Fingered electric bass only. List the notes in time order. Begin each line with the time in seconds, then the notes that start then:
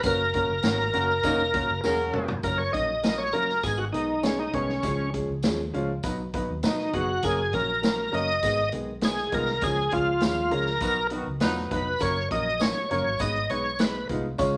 0.04 F#1
0.49 F#1
0.64 G#1
0.94 F#1
1.24 F1
1.69 F#1
1.84 E1
2.15 F1
2.43 F#1
2.74 A#1
3.34 F#1
3.64 G#1
3.94 B1
4.53 C2
4.83 C#2
5.28 C#2
5.43 D#2
5.73 C#2
6.04 B1
6.49 D#2
6.63 B2
6.94 F#1
7.23 F#1
7.54 A#1
8.13 F#1
8.43 G#1
8.73 B1
9.33 C2
9.62 C#2
9.92 C#2
10.22 D#2
10.51 C#2
10.81 B1
11.27 C#2
11.42 E1
11.71 F1
12.00 F#1
12.31 A#1
12.91 F#1
13.06 G#1
13.20 G#1
13.50 B1
14.09 C2
14.39 C#2